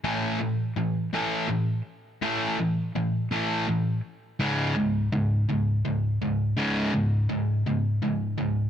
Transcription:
\new Staff \with { instrumentName = "Overdriven electric guitar" } { \clef bass \time 6/8 \key cis \minor \tempo 4. = 55 <a, e a>8 <a, e>8 <a, e>8 <a, e a>8 <a, e>8 r8 | <a, e a>8 <a, e>8 <a, e>8 <a, e a>8 <a, e>8 r8 | <cis, gis, cis>8 <cis, gis,>8 <cis, gis,>8 <cis, gis,>8 <cis, gis,>8 <cis, gis,>8 | <cis, gis, cis>8 <cis, gis,>8 <cis, gis,>8 <cis, gis,>8 <cis, gis,>8 <cis, gis,>8 | }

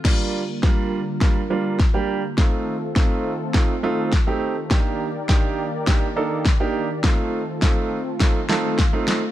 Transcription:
<<
  \new Staff \with { instrumentName = "Analog synth pad" } { \time 4/4 \key bes \major \tempo 4 = 103 << { <g bes f' bes'>1 | <a c' f' a'>1 | <bes g' bes' d''>1 | <a c' f' a'>1 | } \\ { d1 | ees1~ | ees1~ | ees1 | } >> }
  \new Staff \with { instrumentName = "Grand piano" } { \time 4/4 \key bes \major <g bes d' f'>8 r8 <g bes d' f'>8 r8 <g bes d' f'>16 r16 <g bes d' f'>8 r16 <g bes d' g'>8 r16 | <a c' ees' f'>8 r8 <a c' ees' f'>8 r8 <a c' ees' f'>16 r16 <a c' ees' f'>8 r16 <a c' ees' g'>8 r16 | <bes d' ees' g'>8 r8 <bes d' ees' g'>8 r8 <bes d' ees' g'>16 r16 <bes d' ees' a'>8 r16 <bes d' ees' g'>8 r16 | <a c' ees' f'>8 r8 <a c' ees' f'>8 r8 <a c' ees' f'>16 r16 <a c' ees' f' a''>8 r16 <a c' ees' f'>8 r16 | }
  \new DrumStaff \with { instrumentName = "Drums" } \drummode { \time 4/4 <cymc bd sn>4 <bd sn>4 <bd sn>4 <bd sn>4 | <bd sn>4 <bd sn>4 <bd sn>4 <bd sn>4 | <bd sn>4 <bd sn>4 <bd sn>4 <bd sn>4 | <bd sn>4 <bd sn>4 <bd sn>8 sn8 <bd sn>8 sn8 | }
>>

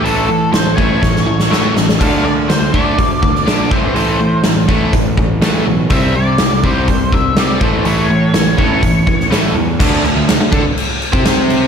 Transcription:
<<
  \new Staff \with { instrumentName = "Lead electric guitar" } { \time 4/4 \key a \phrygian \tempo 4 = 123 a'4 c''8 cis''2 r8 | f''8 d''8 c''8 d''4~ d''16 d''8. c''8~ | c''4 r2. | e''8 d''4 c''4 e''8 d''8 c''8 |
cis''2. r4 | r1 | }
  \new Staff \with { instrumentName = "Overdriven electric guitar" } { \clef bass \time 4/4 \key a \phrygian <a, e a>8 <a, e>8 <a, e>8 <a, e a>8 <a, e>8 <a, e>8 <a, e a>8 <a, e>8 | <d a d'>8 <d a>8 <d a>8 <d a d'>8 <d a>8 <d a>8 <d a d'>8 <a, e a>8 | <a, e a>8 <a, e>8 <a, e>8 <a, e a>8 <a, e>8 <a, e>8 <a, e a>8 <a, e>8 | <c g c'>8 <c g>8 <c g>8 <c g c'>8 <c g>8 <c g>8 <c g c'>8 <a, e a>8 |
<a, e a>8 <a, e>8 <a, e>8 <a, e a>8 <a, e>8 <a, e>8 <a, e a>8 <a, e>8 | <d a d'>8 <d a>16 <d a>8 <d a>16 <d' a'>16 r4 <c' g' c''>4~ <c' g' c''>16 | }
  \new Staff \with { instrumentName = "Picked electric bass" } { \clef bass \time 4/4 \key a \phrygian a,,8 a,8 a,,8 a,,8 a,,4 a,,8 a,,8 | d,8 d8 d,8 d,8 d,4 bes,,8 a,,8 | a,,8 a,8 a,,8 a,,8 a,,4 a,,8 b,,8 | c,8 c8 c,8 c,8 c,4 c,8 a,,8 |
a,,8 a,8 a,,8 a,,8 a,,4 a,,8 e,8 | d,8 d,16 d,8 d,16 d16 r4 c4~ c16 | }
  \new DrumStaff \with { instrumentName = "Drums" } \drummode { \time 4/4 hho4 <hho sn>8 bd8 <bd sn>16 sn8 sn16 sn8 sn16 sn16 | <cymc hho bd>4 <hho sn>8 bd8 <hho bd>8 bd16 sn16 <hho sn>8 bd8 | hho4 <hho sn>8 bd8 <hho bd>8 bd8 <hho sn>4 | <hho bd>4 <hho sn>8 bd8 <hho bd>8 bd8 <hho sn>8 bd8 |
hho4 <hho sn>8 bd8 <hho bd>8 bd16 sn16 <hho sn>4 | <cymc bd>8 cymc8 <cymc sn>8 <cymc bd>8 cymc8 cymc16 bd16 <cymc sn>8 cymc8 | }
>>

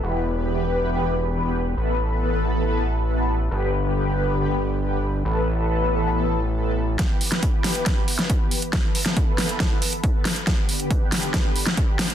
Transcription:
<<
  \new Staff \with { instrumentName = "Analog synth pad" } { \time 4/4 \key e \phrygian \tempo 4 = 138 <e b g' b'>8 r16 <e b g' b'>16 <e b g' b'>8 <e b g' b'>16 <e b g' b'>16 <e b g' b'>8 r8 <e b g' b'>8 r8 | <e b a' b'>8 r16 <e b a' b'>16 <e b a' b'>8 <e b a' b'>16 <e b a' b'>16 <e b a' b'>8 r8 <e b a' b'>8 r8 | <d b g' b'>8 r16 <d b g' b'>16 <d b g' b'>8 <d b g' b'>16 <d b g' b'>16 <d b g' b'>8 r8 <d b g' b'>8 r8 | <e b a' b'>8 r16 <e b a' b'>16 <e b a' b'>8 <e b a' b'>16 <e b a' b'>16 <e b a' b'>8 r8 <e b a' b'>8 r8 |
<e b g' b'>8 r16 <e b g' b'>16 <e b g' b'>8 <e b g' b'>16 <e b g' b'>16 <e b g' b'>8 r8 <e b g' b'>8 r8 | <e b a' b'>8 r16 <e b a' b'>16 <e b a' b'>8 <e b a' b'>16 <e b a' b'>16 <e b a' b'>8 r8 <e b a' b'>8 r8 | <d b g' b'>8 r16 <d b g' b'>16 <d b g' b'>8 <d b g' b'>16 <d b g' b'>16 <d b g' b'>8 r8 <d b g' b'>8 r8 | }
  \new Staff \with { instrumentName = "Analog synth bass" } { \clef bass \time 4/4 \key e \phrygian e,,1 | a,,1 | g,,1 | a,,1 |
r1 | r1 | r1 | }
  \new DrumStaff \with { instrumentName = "Drums" } \drummode { \time 4/4 r4 r4 r4 r4 | r4 r4 r4 r4 | r4 r4 r4 r4 | r4 r4 r4 r4 |
<hh bd sn>8 hho16 <hh sn>16 <hh bd>8 <hho sn>16 hh16 <hh bd sn>8 hho16 <hh sn>16 <hh bd>8 hho16 hh16 | <hh bd sn>8 hho16 <hh sn>16 <hh bd>8 <hho sn>16 hh16 <hh bd sn>8 hho16 hh16 <hh bd>8 <hho sn>16 hh16 | <hh bd sn>8 hho16 hh16 <hh bd>8 <hho sn>16 hh16 <hh bd sn>8 hho16 <hh sn>16 <hh bd>8 <hho sn>16 hh16 | }
>>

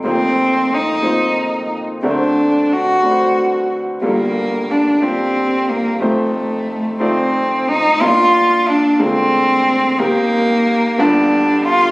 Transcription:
<<
  \new Staff \with { instrumentName = "Cello" } { \time 6/8 \key bes \major \tempo 4. = 60 c'4 ees'4. r8 | d'4 fis'4. r8 | bes4 d'8 c'4 bes8 | a4. c'4 ees'8 |
f'4 d'8 c'4. | bes4. d'4 f'8 | }
  \new Staff \with { instrumentName = "Grand piano" } { \time 6/8 \key bes \major <bes c' ees' f' c''>4. <bes c' ees' f' c''>4. | <a c' d' fis' bes' c''>4. <a c' d' fis' ces'' c''>4. | <g bes d' f' a' bes'>4. <g bes d' f' g'>4. | <a c' ees' f' c''>4. <a c' ees' f' d''>4. |
<des' d' f' bes'>4. <aes bes d' f' bes'>4. | <ees' g' bes'>4. <b d' f' g' d''>4. | }
  \new Staff \with { instrumentName = "Grand piano" } { \clef bass \time 6/8 \key bes \major <f,, f,>2. | <d, d>2. | <g,, g,>2. | <f,, f,>2. |
<bes,, bes,>4. <d, d>4. | <ees, ees>4. <g,, g,>4. | }
>>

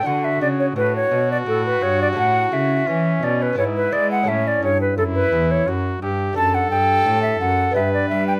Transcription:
<<
  \new Staff \with { instrumentName = "Flute" } { \time 3/4 \key a \mixolydian \tempo 4 = 86 fis''16 e''16 d''16 cis''16 b'16 cis''8 d''16 a'16 b'16 cis''16 d''16 | fis''8 e''4 d''16 b'16 cis''16 b'16 d''16 fis''16 | e''16 d''16 cis''16 b'16 a'16 b'8 cis''16 r4 | \key d \mixolydian a''16 fis''16 g''8. e''16 fis''8 e''16 d''16 e''16 g''16 | }
  \new Staff \with { instrumentName = "Trumpet" } { \time 3/4 \key a \mixolydian fis'4 fis'2~ | fis'4 cis'4 e'4 | cis'8 r8 e'4 fis'8 g'8 | \key d \mixolydian a'2 b'4 | }
  \new Staff \with { instrumentName = "Lute" } { \time 3/4 \key a \mixolydian <a d' a'>2. | <cis' e' a'>2 <b e' b'>4 | <cis' e' a'>2. | \key d \mixolydian <a d' a'>2 <b d' g'>4 | }
  \new Staff \with { instrumentName = "Lute" } { \clef bass \time 3/4 \key a \mixolydian d8 cis8 a,8 b,8 a,8 g,8 | a,8 cis8 e8 b,8 gis,8 gis8 | a,8 g,8 fis,8 e,8 fis,8 g,8 | \key d \mixolydian fis,8 g,8 a,8 fis,8 g,8 g8 | }
  \new Staff \with { instrumentName = "Cello" } { \clef bass \time 3/4 \key a \mixolydian d8 cis8 a,8 b,8 a,8 g,8 | a,8 cis8 e8 b,8 gis,8 gis8 | a,8 g,8 fis,8 e,8 fis,8 g,8 | \key d \mixolydian fis,8 g,8 a,8 fis,8 g,8 g8 | }
>>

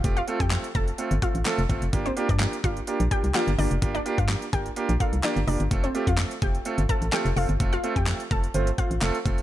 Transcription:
<<
  \new Staff \with { instrumentName = "Synth pluck" } { \time 4/4 \key f \mixolydian \tempo 4 = 127 r16 <f' f''>16 r16 <g' g''>8 r16 <a' a''>16 r8. <f' f''>8 r4 | r16 <c' c''>16 r16 <d' d''>8 r16 <f' f''>16 r8. <g' g''>8 <f' f''>16 r16 <d' d''>16 r16 | r16 <d' d''>16 r16 <f' f''>8 r16 <g' g''>16 r8. <f' f''>8 <d' d''>16 r16 <d' d''>16 r16 | r16 <c' c''>16 r16 <f' f''>8 r16 <g' g''>16 r8. <a' a''>8 <g' g''>16 r16 <f' f''>16 r16 |
r16 <f' f''>16 r16 <g' g''>8 r16 <a' a''>16 r8. <f' f''>8 r4 | }
  \new Staff \with { instrumentName = "Grand piano" } { \time 4/4 \key f \mixolydian <a c' f' g'>8 <a c' f' a'>8 <a c' f' a'>8 <a c' f' a'>8 <a c' f' a'>8 <a c' f' a'>8 <a c' f' a'>8 <a c' f' a'>8 | <bes d' f' g'>8 <bes d' f' g'>8 <bes d' f' g'>8 <bes d' f' g'>8 <bes d' f' g'>8 <bes d' f' g'>8 <bes d' f' g'>8 <bes d' f' g'>8 | <bes d' f' g'>8 <bes d' f' g'>8 <bes d' f' g'>8 <bes d' f' bes'>8 <bes d' f' g'>8 <bes d' f' a'>8 <bes d' f' g'>8 <bes d' f' g'>8 | <a c' f' a'>8 <a c' f' g'>8 <a c' f' a'>8 <a c' f' a'>8 <a c' f' a'>8 <a c' f' a'>8 <a c' f' a'>8 <a c' f' a'>8 |
<a c' f' a'>8 <a c' f' a'>8 <a c' f' a'>8 <a c' f' a'>8 <a c' f' c''>8 <a c' f' c''>8 <a c' f' a'>8 <a c' f' a'>8 | }
  \new Staff \with { instrumentName = "FM bass" } { \clef bass \time 4/4 \key f \mixolydian f,,8 r16 f,8 r16 f,,8 r16 g,,16 r16 a,,16 r16 f,,16 g,,16 f,,16 | g,,8 r16 g,8 r16 g,,8 r16 bes,,16 r16 c,16 r16 g,,16 g,,16 f,,16 | g,,8 r16 g,8 r16 g,,8 r16 bes,,16 r16 c,16 r16 g,,16 f,,16 g,,16 | f,,8 r16 f,8 r16 f,,8 r16 g,,16 r16 a,,16 r16 f,,16 f,,16 g,,16 |
f,,8 r16 f,8 r16 f,,8 g,,8 a,,16 a,,16 f,,16 r16 f,,8 | }
  \new DrumStaff \with { instrumentName = "Drums" } \drummode { \time 4/4 <hh bd>16 hh16 hh16 <hh bd>16 <hc hh sn>16 hh16 <hh bd>16 hh16 hh16 hh16 <hh bd>16 hh16 <hc hh sn>16 hh16 <hh bd>16 hh16 | <hh bd>16 hh16 hh16 <hh bd>16 <hc hh sn>16 hh16 <hh bd>16 hh16 hh16 hh16 <hh bd>16 hh16 <hc hh sn>16 hh16 hho16 hh16 | <hh bd>16 hh16 hh16 <hh bd>16 <hc hh sn>16 hh16 <hh bd>16 hh16 hh16 hh16 <hh bd>16 hh16 <hc hh sn>16 hh16 hho16 hh16 | <hh bd>16 hh16 hh16 <hh bd>16 <hc hh sn>16 hh16 <hh bd>16 hh16 hh16 hh16 <hh bd>16 hh16 <hc hh sn>16 hh16 hho16 hh16 |
<hh bd>16 hh16 hh16 <hh bd>16 <hc hh sn>16 hh16 <hh bd>16 hh16 hh16 hh16 <hh bd>16 hh16 <hc hh sn>16 hh16 <hh bd>16 hh16 | }
>>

